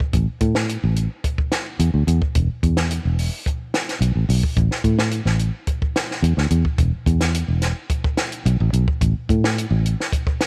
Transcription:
0.00 kick
0.13 A1, kick, closed hi-hat
0.40 A2, kick, closed hi-hat
0.55 snare
0.69 closed hi-hat
0.84 A1
0.96 closed hi-hat
1.24 kick, closed hi-hat
1.38 kick
1.52 snare, closed hi-hat
1.79 E2, closed hi-hat
1.94 D2
2.07 E2, closed hi-hat
2.22 kick
2.35 E1, kick, closed hi-hat
2.63 E2, kick, closed hi-hat
2.77 snare, closed hi-hat
2.91 closed hi-hat
3.05 E1
3.19 open hi-hat
3.46 kick, closed hi-hat
3.74 snare, closed hi-hat
3.89 snare, closed hi-hat
4.01 B1, closed hi-hat
4.15 A1
4.29 B1, open hi-hat
4.43 kick
4.56 A1, kick, closed hi-hat
4.71 snare
4.84 A2, kick, closed hi-hat
4.99 snare
5.11 closed hi-hat
5.25 A1, snare
5.39 closed hi-hat
5.67 kick, closed hi-hat
5.82 kick
5.96 snare, closed hi-hat
6.11 snare
6.22 E2, closed hi-hat
6.37 D2, snare
6.51 E2, closed hi-hat
6.65 kick
6.78 E1, kick, closed hi-hat
7.06 E2, kick, closed hi-hat
7.21 snare, closed hi-hat
7.34 closed hi-hat
7.48 E1
7.62 snare, closed hi-hat
7.90 kick, closed hi-hat
8.04 kick
8.17 snare, closed hi-hat
8.32 closed hi-hat
8.46 B1, closed hi-hat
8.60 A1
8.73 B1, closed hi-hat
8.88 kick
9.01 A1, kick, closed hi-hat
9.29 A2, kick, closed hi-hat
9.44 snare
9.58 closed hi-hat
9.71 A1
9.86 closed hi-hat
10.00 snare
10.12 kick, closed hi-hat
10.27 kick
10.41 snare, closed hi-hat

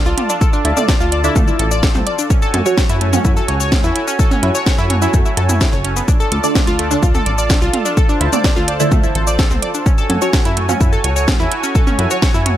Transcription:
Already playing: D3 A3 D4 F4 A4 D5 A5
0.06 C2 F4 F5, shaker
0.18 F4 F5, closed hi-hat, mid tom
0.30 D4 D5, shaker
0.41 A4 A5, kick, shaker
0.53 D4 D5, shaker
0.65 D2 E4 E5, closed hi-hat
0.77 D3 A3 D4 D5 D6, mid tom, shaker
0.88 D5 D6, kick, snare, shaker
1.00 D2 F4 F5, shaker
1.12 D5 D6, closed hi-hat
1.24 D3 A3 D4 E4 E5, shaker
1.36 D2 A3 A4, kick, mid tom, shaker
1.48 E4 E5, shaker
1.59 A1 A4 A5, closed hi-hat
1.71 D5 D6, shaker
1.83 A4 A5, kick, snare, shaker
1.95 C2 C4 C5, mid tom, shaker
2.07 D5 D6, closed hi-hat
2.19 D4 D5, shaker
2.30 C#4 F#4 A4 C#5 G#5, kick, shaker
2.42 A4 A5, shaker
2.54 F#2 A4 A5, closed hi-hat, mid tom
2.66 F#3 C#4 F#4 C#5 C#6, shaker
2.77 C#4 C#5, kick, snare, shaker
2.89 F#2 E4 E5, closed hi-hat, shaker
3.01 A3 A4, closed hi-hat
3.13 F#3 C#4 F#4 C#5, mid tom, shaker
3.25 F#2 E4 E5, kick, shaker
3.37 A4 A5, shaker
3.48 C#2 C#5 C#6, closed hi-hat
3.60 C#5 C#6, shaker
3.72 C#4 C#5, kick, snare, mid tom, shaker
3.84 E2 E4 E5, shaker
3.96 E4 E5, closed hi-hat
4.07 C#4 C#5, shaker
4.19 A4 A5, kick, shaker
4.31 C#4 C#5, mid tom, shaker
4.43 F#2 E4 E5, closed hi-hat
4.55 C#5 C#6, shaker
4.66 C#5 C#6, kick, snare, shaker
4.78 F#2 E4 E5, shaker
4.90 C#5 C#6, closed hi-hat, mid tom
5.02 F#3 C#4 E4 F#4 E5, shaker
5.14 F#2 A3 A4, kick, shaker
5.26 E4 E5, shaker
5.37 F#2 A4 A5, closed hi-hat
5.49 E4 E5, mid tom, shaker
5.61 E4 E5, kick, snare, shaker
5.73 F#1 C#5 C#6, shaker
5.84 C#4 C#5, closed hi-hat
5.96 B3 B4, shaker
6.08 D4 F4 D5 A5, kick, shaker
6.20 A4 A5, shaker
6.32 D2 A4 A5, closed hi-hat
6.44 D3 A3 D4 D5 D6, shaker
6.55 D4 D5, kick, snare, mid tom, shaker
6.67 D2 F4 F5, closed hi-hat, shaker
6.79 A3 A4, closed hi-hat
6.91 D3 A3 D4 D5, shaker
7.03 D2 F4 F5, kick, shaker
7.15 A4 A5, mid tom, shaker
7.26 A1 D5 D6, closed hi-hat
7.38 D5 D6, shaker
7.50 D4 D5, kick, snare, shaker
7.62 C2 F4 F5, shaker
7.73 F4 F5, closed hi-hat, mid tom
7.85 D4 D5, shaker
7.97 A4 C5 A5, kick, shaker
8.09 D4 D5, shaker
8.21 D2 E4 E5, closed hi-hat
8.33 D3 A3 D4 D5 D6, mid tom, shaker
8.44 D5 D6, kick, snare, shaker
8.56 D2 F4 F5, shaker
8.68 D5 D6, closed hi-hat
8.80 D3 A3 D4 E4 E5, shaker
8.92 D2 A3 A4, kick, mid tom, shaker
9.04 E4 E5, shaker
9.15 A1 A4 A5, closed hi-hat
9.27 D5 D6, shaker
9.39 A4 A5, kick, snare, shaker
9.51 C2 C4 C5, mid tom, shaker
9.62 D5 D6, closed hi-hat
9.74 D4 D5, shaker
9.86 C#4 F#4 C#5 G#5, kick, shaker
9.98 A4 A5, shaker
10.10 F#2 A4 A5, closed hi-hat, mid tom
10.22 F#3 C#4 F#4 C#5 C#6, shaker
10.33 C#4, kick, snare, shaker
10.45 F#2 E4 E5, closed hi-hat, shaker
10.57 A3 A4, closed hi-hat
10.69 F#3 C#4 F#4 C#5, mid tom, shaker
10.81 F#2 E4 E5, kick, shaker
10.93 A4 A5, shaker
11.04 C#2 C#5 C#6, closed hi-hat
11.16 C#5 C#6, shaker
11.28 C#4 C#5, kick, snare, mid tom, shaker
11.40 E2 E4 E5, shaker
11.51 E4 E5, closed hi-hat
11.63 C#4 C#5, shaker
11.75 A4 A5, kick, shaker
11.87 C#4 C#5, mid tom, shaker
11.99 F#2 E4 E5, closed hi-hat
12.11 F#3 C#4 F#4 C#5 C#6, shaker
12.22 C#5 C#6, kick, snare, shaker
12.34 F#2 E4 E5, shaker
12.46 C#5 C#6, closed hi-hat, mid tom

